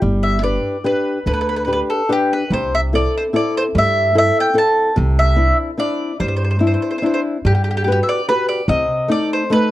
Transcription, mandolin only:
0, 0, Header, 1, 2, 480
1, 0, Start_track
1, 0, Key_signature, 0, "major"
1, 0, Tempo, 412088
1, 28, Time_signature, 3, 2, 24, 8
1, 11310, End_track
2, 0, Start_track
2, 0, Title_t, "Mandolin"
2, 0, Program_c, 0, 25
2, 268, Note_on_c, 0, 76, 89
2, 484, Note_off_c, 0, 76, 0
2, 507, Note_on_c, 0, 74, 85
2, 999, Note_off_c, 0, 74, 0
2, 1004, Note_on_c, 0, 71, 81
2, 1444, Note_off_c, 0, 71, 0
2, 1481, Note_on_c, 0, 71, 83
2, 1541, Note_off_c, 0, 71, 0
2, 1555, Note_on_c, 0, 71, 70
2, 1628, Note_off_c, 0, 71, 0
2, 1642, Note_on_c, 0, 71, 70
2, 1721, Note_off_c, 0, 71, 0
2, 1735, Note_on_c, 0, 71, 65
2, 1807, Note_off_c, 0, 71, 0
2, 1821, Note_on_c, 0, 71, 69
2, 1899, Note_off_c, 0, 71, 0
2, 1918, Note_on_c, 0, 71, 53
2, 1993, Note_off_c, 0, 71, 0
2, 2010, Note_on_c, 0, 71, 80
2, 2088, Note_off_c, 0, 71, 0
2, 2210, Note_on_c, 0, 69, 74
2, 2448, Note_off_c, 0, 69, 0
2, 2474, Note_on_c, 0, 67, 90
2, 2697, Note_off_c, 0, 67, 0
2, 2713, Note_on_c, 0, 71, 75
2, 2921, Note_off_c, 0, 71, 0
2, 2951, Note_on_c, 0, 72, 88
2, 3179, Note_off_c, 0, 72, 0
2, 3199, Note_on_c, 0, 76, 95
2, 3260, Note_off_c, 0, 76, 0
2, 3438, Note_on_c, 0, 74, 94
2, 3663, Note_off_c, 0, 74, 0
2, 3697, Note_on_c, 0, 72, 79
2, 3756, Note_off_c, 0, 72, 0
2, 3914, Note_on_c, 0, 74, 95
2, 4157, Note_off_c, 0, 74, 0
2, 4162, Note_on_c, 0, 72, 95
2, 4221, Note_off_c, 0, 72, 0
2, 4406, Note_on_c, 0, 76, 107
2, 4832, Note_off_c, 0, 76, 0
2, 4873, Note_on_c, 0, 76, 115
2, 5092, Note_off_c, 0, 76, 0
2, 5129, Note_on_c, 0, 79, 106
2, 5322, Note_off_c, 0, 79, 0
2, 5337, Note_on_c, 0, 81, 110
2, 5769, Note_off_c, 0, 81, 0
2, 6045, Note_on_c, 0, 76, 105
2, 6483, Note_off_c, 0, 76, 0
2, 6752, Note_on_c, 0, 74, 104
2, 7190, Note_off_c, 0, 74, 0
2, 7223, Note_on_c, 0, 72, 78
2, 7304, Note_off_c, 0, 72, 0
2, 7318, Note_on_c, 0, 72, 56
2, 7398, Note_off_c, 0, 72, 0
2, 7414, Note_on_c, 0, 72, 59
2, 7490, Note_off_c, 0, 72, 0
2, 7508, Note_on_c, 0, 72, 54
2, 7566, Note_off_c, 0, 72, 0
2, 7580, Note_on_c, 0, 72, 54
2, 7652, Note_off_c, 0, 72, 0
2, 7676, Note_on_c, 0, 72, 44
2, 7746, Note_off_c, 0, 72, 0
2, 7768, Note_on_c, 0, 72, 66
2, 7836, Note_off_c, 0, 72, 0
2, 7850, Note_on_c, 0, 72, 49
2, 7928, Note_off_c, 0, 72, 0
2, 7946, Note_on_c, 0, 72, 56
2, 8017, Note_off_c, 0, 72, 0
2, 8044, Note_on_c, 0, 72, 55
2, 8107, Note_off_c, 0, 72, 0
2, 8131, Note_on_c, 0, 72, 56
2, 8193, Note_off_c, 0, 72, 0
2, 8222, Note_on_c, 0, 72, 53
2, 8289, Note_off_c, 0, 72, 0
2, 8314, Note_on_c, 0, 72, 70
2, 8381, Note_off_c, 0, 72, 0
2, 8694, Note_on_c, 0, 67, 92
2, 8773, Note_off_c, 0, 67, 0
2, 8790, Note_on_c, 0, 67, 58
2, 8868, Note_off_c, 0, 67, 0
2, 8900, Note_on_c, 0, 67, 65
2, 8962, Note_off_c, 0, 67, 0
2, 8976, Note_on_c, 0, 67, 58
2, 9037, Note_off_c, 0, 67, 0
2, 9051, Note_on_c, 0, 67, 75
2, 9121, Note_off_c, 0, 67, 0
2, 9134, Note_on_c, 0, 67, 58
2, 9207, Note_off_c, 0, 67, 0
2, 9225, Note_on_c, 0, 67, 81
2, 9300, Note_off_c, 0, 67, 0
2, 9353, Note_on_c, 0, 76, 62
2, 9416, Note_off_c, 0, 76, 0
2, 9420, Note_on_c, 0, 74, 91
2, 9628, Note_off_c, 0, 74, 0
2, 9652, Note_on_c, 0, 71, 98
2, 9878, Note_off_c, 0, 71, 0
2, 9884, Note_on_c, 0, 74, 86
2, 10097, Note_off_c, 0, 74, 0
2, 10123, Note_on_c, 0, 75, 94
2, 10612, Note_off_c, 0, 75, 0
2, 10617, Note_on_c, 0, 74, 99
2, 10839, Note_off_c, 0, 74, 0
2, 10868, Note_on_c, 0, 72, 81
2, 11068, Note_off_c, 0, 72, 0
2, 11095, Note_on_c, 0, 71, 107
2, 11310, Note_off_c, 0, 71, 0
2, 11310, End_track
0, 0, End_of_file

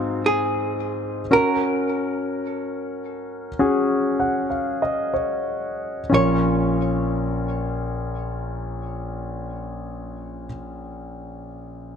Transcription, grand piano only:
0, 0, Header, 1, 2, 480
1, 0, Start_track
1, 0, Key_signature, -5, "minor"
1, 0, Tempo, 1090909
1, 577, Time_signature, 4, 2, 24, 8
1, 1068, Tempo, 1165049
1, 1548, Tempo, 1226994
1, 2028, Tempo, 1301518
1, 2508, Tempo, 1342282
1, 4598, End_track
2, 0, Start_track
2, 0, Title_t, "Grand piano"
2, 0, Program_c, 0, 0
2, 0, Control_c, 0, 64, 127
2, 0, Note_on_c, 0, 60, 52
2, 0, Note_on_c, 0, 63, 47
2, 0, Note_on_c, 0, 77, 57
2, 530, Note_off_c, 0, 60, 0
2, 531, Note_off_c, 0, 63, 0
2, 531, Note_off_c, 0, 77, 0
2, 575, Note_on_c, 0, 61, 52
2, 577, Note_on_c, 0, 66, 48
2, 578, Note_on_c, 0, 70, 60
2, 584, Control_c, 0, 64, 0
2, 670, Control_c, 0, 64, 127
2, 1497, Note_off_c, 0, 61, 0
2, 1498, Note_off_c, 0, 66, 0
2, 1499, Note_off_c, 0, 70, 0
2, 1548, Note_on_c, 0, 61, 56
2, 1549, Note_on_c, 0, 66, 53
2, 1550, Note_on_c, 0, 68, 64
2, 1784, Note_on_c, 0, 78, 44
2, 1896, Note_off_c, 0, 78, 0
2, 1903, Note_on_c, 0, 77, 40
2, 2018, Note_off_c, 0, 77, 0
2, 2029, Note_on_c, 0, 75, 45
2, 2137, Note_off_c, 0, 75, 0
2, 2145, Note_on_c, 0, 73, 44
2, 2458, Note_off_c, 0, 61, 0
2, 2458, Note_off_c, 0, 66, 0
2, 2459, Note_off_c, 0, 68, 0
2, 2492, Note_off_c, 0, 73, 0
2, 2499, Note_on_c, 0, 61, 54
2, 2506, Note_on_c, 0, 34, 50
2, 2506, Note_on_c, 0, 65, 47
2, 2512, Control_c, 0, 64, 0
2, 2513, Note_on_c, 0, 70, 54
2, 2583, Control_c, 0, 64, 127
2, 4049, Note_off_c, 0, 61, 0
2, 4057, Note_off_c, 0, 34, 0
2, 4057, Note_off_c, 0, 65, 0
2, 4064, Note_off_c, 0, 70, 0
2, 4598, End_track
0, 0, End_of_file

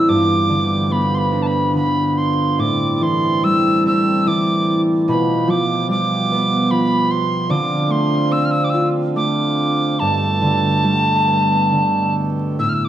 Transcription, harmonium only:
0, 0, Header, 1, 2, 480
1, 0, Start_track
1, 0, Tempo, 839161
1, 53, Time_signature, 3, 2, 24, 8
1, 1974, Tempo, 809717
1, 4854, Tempo, 837989
1, 6294, Tempo, 877193
1, 7422, End_track
2, 0, Start_track
2, 0, Title_t, "Harmonium"
2, 0, Program_c, 0, 20
2, 48, Note_on_c, 0, 53, 60
2, 48, Note_on_c, 0, 59, 60
2, 49, Note_on_c, 0, 67, 66
2, 1475, Note_off_c, 0, 53, 0
2, 1475, Note_off_c, 0, 59, 0
2, 1476, Note_off_c, 0, 67, 0
2, 1488, Note_on_c, 0, 60, 57
2, 1493, Note_on_c, 0, 55, 56
2, 1493, Note_on_c, 0, 69, 64
2, 2925, Note_off_c, 0, 60, 0
2, 2927, Note_off_c, 0, 55, 0
2, 2927, Note_off_c, 0, 69, 0
2, 2938, Note_on_c, 0, 59, 58
2, 2940, Note_on_c, 0, 53, 56
2, 2940, Note_on_c, 0, 67, 63
2, 2946, Note_on_c, 0, 47, 64
2, 4354, Note_off_c, 0, 59, 0
2, 4355, Note_off_c, 0, 53, 0
2, 4356, Note_off_c, 0, 67, 0
2, 4358, Note_off_c, 0, 47, 0
2, 4366, Note_on_c, 0, 50, 60
2, 4366, Note_on_c, 0, 60, 54
2, 4366, Note_on_c, 0, 65, 73
2, 5799, Note_off_c, 0, 50, 0
2, 5799, Note_off_c, 0, 60, 0
2, 5799, Note_off_c, 0, 65, 0
2, 5824, Note_on_c, 0, 47, 61
2, 5824, Note_on_c, 0, 67, 68
2, 5826, Note_on_c, 0, 57, 61
2, 7249, Note_off_c, 0, 47, 0
2, 7249, Note_off_c, 0, 67, 0
2, 7250, Note_off_c, 0, 57, 0
2, 7422, End_track
0, 0, End_of_file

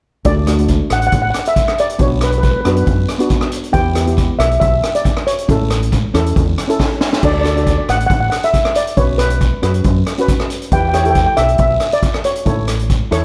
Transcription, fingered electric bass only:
0, 0, Header, 1, 2, 480
1, 0, Start_track
1, 0, Key_signature, 2, "major"
1, 0, Tempo, 436047
1, 277, Time_signature, 4, 2, 24, 8
1, 14583, End_track
2, 0, Start_track
2, 0, Title_t, "Fingered electric bass"
2, 0, Program_c, 0, 33
2, 278, Note_on_c, 0, 38, 81
2, 872, Note_off_c, 0, 38, 0
2, 997, Note_on_c, 0, 33, 69
2, 1195, Note_off_c, 0, 33, 0
2, 1238, Note_on_c, 0, 33, 81
2, 1436, Note_off_c, 0, 33, 0
2, 2197, Note_on_c, 0, 35, 89
2, 2791, Note_off_c, 0, 35, 0
2, 2922, Note_on_c, 0, 42, 66
2, 3118, Note_off_c, 0, 42, 0
2, 3160, Note_on_c, 0, 42, 85
2, 3357, Note_off_c, 0, 42, 0
2, 4116, Note_on_c, 0, 40, 84
2, 4710, Note_off_c, 0, 40, 0
2, 4835, Note_on_c, 0, 35, 73
2, 5034, Note_off_c, 0, 35, 0
2, 5084, Note_on_c, 0, 35, 85
2, 5279, Note_off_c, 0, 35, 0
2, 6044, Note_on_c, 0, 33, 80
2, 6635, Note_off_c, 0, 33, 0
2, 6760, Note_on_c, 0, 40, 73
2, 6956, Note_off_c, 0, 40, 0
2, 7007, Note_on_c, 0, 40, 80
2, 7200, Note_off_c, 0, 40, 0
2, 7963, Note_on_c, 0, 38, 79
2, 8553, Note_off_c, 0, 38, 0
2, 8683, Note_on_c, 0, 33, 73
2, 8878, Note_off_c, 0, 33, 0
2, 8916, Note_on_c, 0, 33, 84
2, 9114, Note_off_c, 0, 33, 0
2, 9879, Note_on_c, 0, 35, 92
2, 10471, Note_off_c, 0, 35, 0
2, 10599, Note_on_c, 0, 42, 75
2, 10795, Note_off_c, 0, 42, 0
2, 10841, Note_on_c, 0, 42, 83
2, 11037, Note_off_c, 0, 42, 0
2, 11801, Note_on_c, 0, 40, 95
2, 12392, Note_off_c, 0, 40, 0
2, 12524, Note_on_c, 0, 35, 68
2, 12719, Note_off_c, 0, 35, 0
2, 12759, Note_on_c, 0, 35, 80
2, 12956, Note_off_c, 0, 35, 0
2, 13718, Note_on_c, 0, 33, 83
2, 14311, Note_off_c, 0, 33, 0
2, 14437, Note_on_c, 0, 40, 71
2, 14583, Note_off_c, 0, 40, 0
2, 14583, End_track
0, 0, End_of_file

